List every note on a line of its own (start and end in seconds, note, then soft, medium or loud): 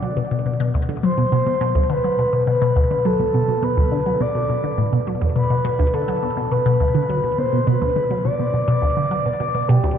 0.03 0.14 F#3 medium
0.17 0.22 B2 medium
0.31 0.43 B2 medium
0.46 0.54 B2 medium
0.60 0.72 B2 loud
0.74 0.82 D2 medium
0.89 0.97 D3 medium
1.03 1.15 F#3 medium
1.03 1.86 C5 loud
1.18 1.22 B2 medium
1.32 1.44 B2 medium
1.46 1.54 B2 medium
1.61 1.73 B2 loud
1.75 1.83 D2 medium
1.90 1.98 D3 medium
1.90 2.44 B4 medium
2.04 2.16 F#3 medium
2.19 2.23 B2 medium
2.33 2.45 B2 medium
2.47 2.55 B2 medium
2.47 3.07 B4 medium
2.62 2.74 B2 loud
2.76 2.84 D2 loud
2.91 2.99 D3 medium
3.05 3.17 F#3 medium
3.05 3.65 A4 medium
3.19 3.24 B2 medium
3.34 3.46 B2 medium
3.48 3.56 B2 medium
3.63 3.75 B2 loud
3.63 4.23 B4 loud
3.77 3.85 D2 loud
3.92 4.00 D3 medium
4.06 4.18 F#3 medium
4.21 4.25 B2 medium
4.21 4.79 D5 loud
4.35 4.47 B2 medium
4.49 4.54 B2 medium
4.64 4.72 D3 medium
4.78 4.86 A2 medium
4.93 4.97 B2 medium
5.07 5.12 F#3 medium
5.21 5.29 E2 loud
5.36 5.48 B2 medium
5.36 5.95 B4 medium
5.50 5.58 B2 medium
5.65 5.77 B2 loud
5.79 5.87 D2 loud
5.94 6.02 D3 medium
5.94 6.53 A4 medium
6.08 6.20 F#3 medium
6.23 6.27 B2 medium
6.37 6.49 B2 medium
6.51 6.59 B2 medium
6.51 7.39 B4 medium
6.66 6.78 B2 medium
6.80 6.88 D2 loud
6.95 7.03 D3 medium
7.09 7.21 F#3 medium
7.24 7.28 B2 medium
7.38 7.50 B2 medium
7.38 7.68 C5 medium
7.53 7.60 B2 medium
7.67 7.79 B2 medium
7.67 8.26 B4 loud
7.82 7.89 D2 loud
7.96 8.04 D3 medium
8.11 8.22 F#3 medium
8.24 8.29 B2 medium
8.24 9.70 D5 loud
8.39 8.51 B2 medium
8.54 8.61 B2 medium
8.68 8.80 B2 loud
8.82 8.90 D2 loud
8.97 9.05 D3 medium
9.11 9.23 F#3 medium
9.26 9.30 B2 medium
9.40 9.52 B2 medium
9.55 9.62 B2 medium
9.68 9.81 B2 loud
9.68 9.97 G4 medium
9.83 9.91 D2 loud